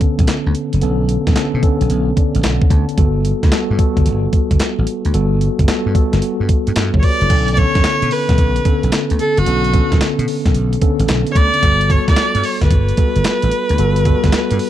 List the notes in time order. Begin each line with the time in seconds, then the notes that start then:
Already playing: D3 B3 C#4 A4
0.01 kick, closed hi-hat
0.19 B1, kick, closed hi-hat
0.27 muted slap bass stroke, snare, clap, closed hi-hat
0.46 D2
0.55 closed hi-hat
0.73 F#1, closed hi-hat
0.81 B1 D3 B3 C#4 A4, closed hi-hat
1.09 closed hi-hat
1.27 B1, kick, snare, closed hi-hat
1.35 D3 B3 C#4 A4, muted slap bass stroke, snare, clap, closed hi-hat
1.54 B2
1.62 D3 B3 C#4 A4, kick, closed hi-hat
1.81 B1, closed hi-hat
1.90 B1, closed hi-hat
2.17 D5, kick, closed hi-hat
2.35 A1, closed hi-hat
2.43 B1 F#5, snare, clap, closed hi-hat
2.62 kick
2.70 D2 A5, kick, closed hi-hat
2.89 closed hi-hat
2.97 G1 G3 B3 F#4 A4, kick, closed hi-hat
3.25 closed hi-hat
3.43 D2, kick, snare, closed hi-hat
3.51 G3 B3 F#4 A4, muted slap bass stroke, snare, clap, closed hi-hat
3.70 G2
3.78 G3 B3 F#4 A4, kick, closed hi-hat
3.97 G1, kick, closed hi-hat
4.06 G1, closed hi-hat
4.33 kick, closed hi-hat
4.51 G1, kick, closed hi-hat
4.60 muted slap bass stroke, snare, clap, closed hi-hat
4.79 A1
4.87 closed hi-hat
5.05 D2, closed hi-hat
5.13 G1 G3 B3 F#4 A4, closed hi-hat
5.41 closed hi-hat
5.59 G1, kick, closed hi-hat
5.67 G3 B3 F#4 A4, muted slap bass stroke, snare, clap, closed hi-hat
5.86 G2
5.94 G3 B3 F#4 A4, kick, closed hi-hat
6.13 G1, snare, closed hi-hat
6.22 closed hi-hat
6.40 G2
6.49 kick, closed hi-hat
6.67 G2, closed hi-hat
6.76 G2, snare, clap, closed hi-hat
6.94 G1 G4 C#5, kick
6.99 B4 C#5, kick, open hi-hat
7.04 F#4 D5
7.21 F#1 E4 A4, closed hi-hat
7.30 B1 D3 B3 C#4 A4, kick, closed hi-hat, crash
7.48 closed hi-hat
7.54 D3 B3 C#4 D5, kick, closed hi-hat
7.58 A4 C#5
7.75 F#2, kick, snare, closed hi-hat
7.84 muted slap bass stroke, snare, clap, closed hi-hat
8.02 B2, closed hi-hat
8.11 B4, open hi-hat
8.29 B1, kick, snare, closed hi-hat
8.38 B1, kick, closed hi-hat
8.56 closed hi-hat
8.65 D3 B3 C#4 A4, kick, closed hi-hat
8.83 B1, closed hi-hat
8.92 snare, clap, closed hi-hat
9.10 D2, closed hi-hat
9.19 A4, closed hi-hat
9.37 F#1 F#4, closed hi-hat
9.46 B1 D3 B3 C#4 A4, closed hi-hat
9.64 closed hi-hat
9.73 D3 B3 C#4 A4, kick, closed hi-hat
9.92 B1, kick, snare, closed hi-hat
10.01 muted slap bass stroke, snare, clap, closed hi-hat
10.19 B2, closed hi-hat
10.28 open hi-hat
10.46 B1, kick, snare, closed hi-hat
10.54 B1, closed hi-hat
10.73 closed hi-hat
10.81 D3 B3 C#4 A4, kick, closed hi-hat
11.00 A1, closed hi-hat
11.08 B1, snare, clap, closed hi-hat
11.27 closed hi-hat
11.32 C#5, kick
11.36 D2 D5, closed hi-hat
11.54 closed hi-hat
11.63 G1 G3 B3 F#4 A4, kick, closed hi-hat
11.81 closed hi-hat
11.89 G3 B3 F#4 A4 C#5, kick, closed hi-hat
12.08 D2 D5, kick, snare, closed hi-hat
12.16 muted slap bass stroke, snare, clap, closed hi-hat
12.35 G2, closed hi-hat
12.44 C#5, open hi-hat
12.61 G1 B4, kick, snare, closed hi-hat
12.71 G1, kick, closed hi-hat
12.89 closed hi-hat
12.97 G3 B3 F#4 A4, kick, closed hi-hat
13.16 G1, closed hi-hat
13.24 snare, clap, closed hi-hat
13.42 A1, closed hi-hat
13.51 closed hi-hat
13.69 D2, closed hi-hat
13.78 G1 G3 B3 F#4 A4, closed hi-hat
13.96 closed hi-hat
14.05 G3 B3 F#4 A4, kick, closed hi-hat
14.24 G1, kick, snare, closed hi-hat
14.32 snare, clap, closed hi-hat
14.51 G2, closed hi-hat
14.59 open hi-hat